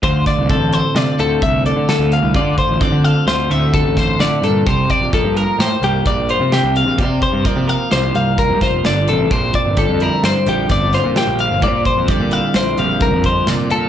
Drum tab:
HH |xxxxxxxxxx|xxxxxxxxxx|xxxxxxxxxx|xxxxxxxxxx|
SD |-o--o---o-|----o--oo-|----o---o-|----o--oo-|
BD |ooo---o---|ooo---oo--|ooo---o---|ooo---oo--|

HH |xxxxxxxxxx|xxxxxxxxxx|
SD |----o-ooo-|----o---o-|
BD |ooo---o---|ooo---oo--|